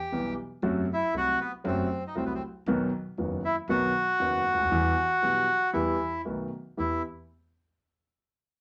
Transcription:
Already playing: bandoneon G4
0.12 upright bass B1, grand piano B1 B2 E3 G3 B3 G4
0.62 upright bass F#1, grand piano F#2 C3 F#3 A3 F#4
0.93 bandoneon E4
1.13 upright bass C2, grand piano C2 C3 F#3 A3 F#4
1.17 bandoneon F#4
1.41 bandoneon B3
1.64 upright bass F#1, grand piano F#2 C3 F#3 A3 F#4, bandoneon C4
2.07 bandoneon D#4
2.15 grand piano C2 C3 F#3 A3 F#4, upright bass C2, bandoneon C4
2.25 bandoneon B3
2.35 bandoneon C4
2.66 upright bass B1, grand piano B1 B2 D#3 F#3 B3 F#4
3.18 upright bass F#1, grand piano F#1 F#2 D#3 F#3 B3 F#4
3.45 bandoneon E4
3.68 upright bass B1, grand piano B1 B2 D#3 F#3 B3 F#4, bandoneon F#4
4.20 grand piano F#1 F#2 D#3 F#3 B3 F#4, upright bass F#1
4.52 upright bass C#2, grand piano C#2
4.58 grand piano D2, upright bass D2
4.64 upright bass D#2, grand piano D#2
4.71 upright bass E2, grand piano E2 E3 G3 B3 G4
5.22 grand piano B1 B2 E3 G3 B3 G4, upright bass B1
5.73 grand piano E2 E3 G3 B3 G4, upright bass E2, bandoneon E4
6.25 grand piano B1 B2 D#3 A3 B3 F#4, upright bass B1
6.77 grand piano E2 B3 E4 G4, upright bass E2, bandoneon E4

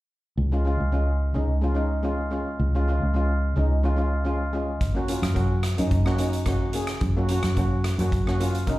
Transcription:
0.37 fingered electric bass C#2
0.52 steel pan G#3 C#4 F4
0.65 steel pan G#3 C#4 F4
0.80 fingered electric bass C#2
0.92 steel pan G#3 C#4 F4
1.34 fingered electric bass C#2, steel pan G#3 C#4 D#4
1.61 steel pan G#3 C#4 F4
1.74 steel pan G#3 C#4 D#4
2.03 steel pan G#3 C#4 F4
2.31 steel pan G#3 C#4 F4
2.59 fingered electric bass C#2
2.75 steel pan G#3 C#4 F4
2.88 steel pan G#3 C#4 F4
3.02 fingered electric bass C#2
3.14 steel pan G#3 C#4 F4
3.56 fingered electric bass C#2, steel pan G#3 C#4 D#4
3.83 steel pan G#3 C#4 F4
3.96 steel pan G#3 C#4 F4
4.24 steel pan G#3 C#4 F4
4.53 steel pan G#3 C#4 F4
4.81 fingered electric bass F#2, kick, closed hi-hat
4.95 steel pan A#3 C#4 F#4
5.08 steel pan A#3 C#4 F4, closed hi-hat
5.22 fingered electric bass F#2, cross-stick, closed hi-hat
5.34 steel pan A#3 C#4 F#4, kick, closed hi-hat
5.63 cross-stick, closed hi-hat
5.78 fingered electric bass F#2, steel pan A#3 C#4 D#4, closed hi-hat
5.91 kick, closed hi-hat
6.05 steel pan A#3 C#4 F#4, cross-stick
6.18 steel pan A#3 C#4 D#4, closed hi-hat
6.33 closed hi-hat
6.46 steel pan A#3 C#4 F#4, kick, cross-stick, closed hi-hat
6.73 steel pan A#3 C#4 G#4, closed hi-hat
6.87 cross-stick, closed hi-hat
7.01 fingered electric bass F#2, kick, closed hi-hat
7.17 steel pan A#3 C#4 F#4
7.29 steel pan A#3 C#4 F#4, closed hi-hat
7.43 fingered electric bass F#2, cross-stick, closed hi-hat
7.57 steel pan A#3 C#4 F#4, kick, closed hi-hat
7.84 cross-stick, closed hi-hat
7.98 fingered electric bass F#2, steel pan A#3 C#4 F#4, closed hi-hat
8.12 kick, closed hi-hat
8.27 steel pan A#3 C#4 F#4, cross-stick
8.40 steel pan A#3 C#4 F4, closed hi-hat
8.55 closed hi-hat
8.67 steel pan A#3 C#4 D#4, kick, closed hi-hat

